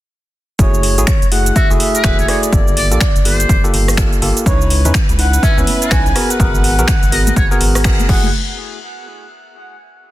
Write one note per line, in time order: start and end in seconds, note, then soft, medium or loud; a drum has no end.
0.59 1.00 F#1 medium
0.59 0.94 A3 medium
0.59 0.94 E4 medium
0.59 0.94 F#4 medium
0.59 0.94 G#4 loud
0.59 1.28 C#5 loud
0.59 kick loud
0.59 closed hi-hat medium
0.59 cabasa medium
0.74 cabasa soft
0.83 open hi-hat loud
0.98 1.05 A1 medium
0.98 1.05 A3 loud
0.98 1.05 E4 medium
0.98 1.05 F#4 medium
0.98 1.05 G#4 loud
0.98 closed hi-hat medium
0.98 cabasa medium
1.07 finger snap loud
1.07 kick loud
1.07 closed hi-hat medium
1.07 cabasa medium
1.22 1.51 F#1 medium
1.22 closed hi-hat soft
1.22 cabasa soft
1.32 1.67 A3 medium
1.32 1.67 E4 medium
1.32 1.67 F#4 medium
1.32 1.67 G#4 medium
1.32 1.57 F#5 loud
1.32 open hi-hat loud
1.46 closed hi-hat medium
1.46 cabasa medium
1.56 1.70 F#4 medium
1.56 1.80 E5 loud
1.56 kick loud
1.56 closed hi-hat medium
1.56 cabasa medium
1.70 1.77 F#1 loud
1.70 2.02 A3 loud
1.70 2.02 E4 medium
1.70 2.02 F#4 medium
1.70 2.02 G#4 loud
1.70 cabasa soft
1.80 2.30 E5 loud
1.80 open hi-hat loud
1.95 2.16 B4 medium
1.95 closed hi-hat medium
1.95 cabasa medium
2.04 2.15 E1 loud
2.04 2.26 A3 medium
2.04 2.26 F#4 medium
2.04 finger snap loud
2.04 kick loud
2.04 cross-stick medium
2.04 closed hi-hat medium
2.04 cabasa medium
2.19 2.26 E1 medium
2.19 2.25 C#5 medium
2.19 closed hi-hat soft
2.19 cabasa soft
2.28 2.50 A3 medium
2.28 2.50 E4 medium
2.28 2.50 F#4 medium
2.28 2.50 G#4 loud
2.28 2.38 C#5 medium
2.28 4.22 D5 loud
2.28 cross-stick medium
2.28 open hi-hat loud
2.43 closed hi-hat medium
2.43 cabasa medium
2.53 2.93 G1 loud
2.53 2.88 A#3 medium
2.53 2.88 G4 medium
2.53 2.88 A4 loud
2.53 kick loud
2.53 closed hi-hat medium
2.53 cabasa medium
2.68 cabasa soft
2.77 2.86 D5 medium
2.77 open hi-hat loud
2.91 2.98 A#1 medium
2.91 2.98 A#3 loud
2.91 2.98 F4 medium
2.91 2.98 G4 medium
2.91 2.99 A4 loud
2.91 2.98 D5 medium
2.91 closed hi-hat soft
2.91 cabasa medium
3.01 finger snap loud
3.01 kick loud
3.01 closed hi-hat medium
3.01 cabasa medium
3.16 3.45 G1 medium
3.16 closed hi-hat soft
3.16 cabasa soft
3.25 3.60 A#3 medium
3.25 3.61 F4 medium
3.25 3.61 G4 medium
3.25 3.61 A4 medium
3.25 3.64 C5 medium
3.25 open hi-hat loud
3.40 closed hi-hat medium
3.40 cabasa medium
3.49 3.60 G1 medium
3.49 kick loud
3.49 closed hi-hat medium
3.49 cabasa medium
3.64 3.95 A#3 loud
3.64 3.95 F4 medium
3.64 3.95 G4 medium
3.64 3.95 A4 loud
3.64 cabasa soft
3.74 4.06 G1 medium
3.74 open hi-hat loud
3.88 cross-stick medium
3.88 open hi-hat medium
3.88 cabasa medium
3.97 4.20 A#3 medium
3.97 4.20 F4 medium
3.97 4.20 G4 medium
3.97 4.20 A4 medium
3.97 finger snap loud
3.97 kick loud
3.97 closed hi-hat medium
3.97 cabasa medium
4.13 closed hi-hat soft
4.13 cabasa soft
4.22 4.32 G1 medium
4.22 4.44 A#3 medium
4.22 4.44 F4 medium
4.22 4.44 G4 medium
4.22 4.44 A4 loud
4.22 open hi-hat loud
4.37 closed hi-hat medium
4.37 cabasa medium
4.46 4.87 C#2 loud
4.46 4.81 C#4 medium
4.46 4.81 D#4 medium
4.46 4.81 E4 medium
4.46 4.81 B4 loud
4.46 8.34 B4 medium
4.46 4.91 C#5 loud
4.46 kick loud
4.46 closed hi-hat medium
4.46 cabasa medium
4.61 cabasa soft
4.70 open hi-hat loud
4.85 4.92 E2 medium
4.85 4.92 C#4 loud
4.85 4.92 D#4 medium
4.85 4.92 E4 medium
4.85 4.92 B4 loud
4.85 closed hi-hat medium
4.85 low conga medium
4.85 cabasa medium
4.94 finger snap loud
4.94 kick loud
4.94 closed hi-hat medium
4.94 cabasa medium
5.09 5.39 C#2 medium
5.09 closed hi-hat soft
5.09 cabasa soft
5.19 5.54 C#4 medium
5.19 5.54 D#4 medium
5.19 5.54 E4 medium
5.19 5.54 B4 medium
5.19 5.45 F#5 loud
5.19 open hi-hat loud
5.33 closed hi-hat medium
5.33 cabasa medium
5.43 5.57 C#4 medium
5.43 5.91 E5 loud
5.43 kick loud
5.43 closed hi-hat medium
5.43 cabasa medium
5.58 5.64 C#2 loud
5.58 5.89 B3 medium
5.58 5.89 C#4 loud
5.58 5.89 E4 medium
5.58 5.89 B4 loud
5.58 cabasa soft
5.67 open hi-hat loud
5.67 high conga medium
5.82 6.03 F#4 medium
5.82 closed hi-hat medium
5.82 cabasa medium
5.91 6.02 B1 loud
5.91 6.13 C#4 medium
5.91 6.13 D#4 medium
5.91 6.13 B4 loud
5.91 6.32 G#5 loud
5.91 finger snap loud
5.91 kick loud
5.91 cross-stick medium
5.91 closed hi-hat medium
5.91 cabasa medium
6.06 6.13 B1 medium
6.06 closed hi-hat soft
6.06 cabasa soft
6.16 6.37 B3 medium
6.16 6.37 F#4 medium
6.16 6.37 G#4 medium
6.16 6.37 A#4 loud
6.16 cross-stick medium
6.16 open hi-hat loud
6.30 7.85 F#5 loud
6.30 closed hi-hat medium
6.30 cabasa medium
6.40 6.80 G#1 loud
6.40 6.75 B3 medium
6.40 6.75 F#4 medium
6.40 6.75 G#4 medium
6.40 6.75 A#4 loud
6.40 kick loud
6.40 closed hi-hat medium
6.40 cabasa medium
6.55 cabasa soft
6.64 open hi-hat loud
6.79 6.85 B1 medium
6.79 6.86 B3 loud
6.79 6.86 F#4 medium
6.79 6.86 G#4 medium
6.79 6.86 A#4 loud
6.79 closed hi-hat medium
6.79 low conga medium
6.79 cabasa medium
6.88 finger snap loud
6.88 kick loud
6.88 closed hi-hat medium
6.88 cabasa medium
7.03 7.32 G#1 medium
7.03 closed hi-hat soft
7.03 cabasa soft
7.12 7.48 B3 medium
7.12 7.48 F#4 medium
7.12 7.48 G#4 medium
7.12 7.48 A#4 medium
7.12 7.22 D#5 medium
7.12 open hi-hat loud
7.27 7.33 D#5 medium
7.27 closed hi-hat medium
7.27 high conga loud
7.27 cabasa medium
7.36 7.47 G#1 medium
7.36 7.46 C#5 medium
7.36 kick loud
7.36 closed hi-hat medium
7.36 cabasa medium
7.51 7.83 B3 loud
7.51 7.83 F#4 medium
7.51 7.83 G#4 medium
7.51 7.83 A#4 loud
7.51 7.57 C#5 medium
7.51 cabasa soft
7.61 7.93 G#1 medium
7.61 open hi-hat loud
7.75 cross-stick medium
7.75 open hi-hat medium
7.75 cabasa medium
7.84 8.07 B3 medium
7.84 8.07 F#4 medium
7.84 8.07 G#4 medium
7.84 8.07 A#4 loud
7.84 finger snap loud
7.84 kick loud
7.84 closed hi-hat medium
7.84 cabasa medium
7.99 closed hi-hat soft
7.99 high conga medium
7.99 cabasa soft
8.09 8.32 F#1 loud
8.09 8.28 A3 medium
8.09 8.28 E4 medium
8.09 8.28 F#4 medium
8.09 8.28 G#4 loud
8.09 8.32 F#5 medium
8.09 kick loud
8.09 crash medium
8.24 high conga medium